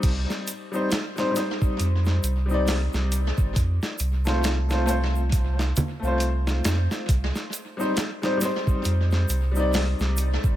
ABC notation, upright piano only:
X:1
M:4/4
L:1/16
Q:"Swing 16ths" 1/4=68
K:Cdor
V:1 name="Upright piano"
[G,CEd]2 z [G,CEc] z [G,CEc] [G,CEc]4- [G,CEc] [G,CEd]4- [G,CEd] | z3 [A,CFc]2 [A,CFc] [A,CFc] z4 [A,CFc]4- [A,CFc] | z3 [G,CEc] z [G,CEc] [G,CEc]4- [G,CEc] [G,CEd]4- [G,CEd] |]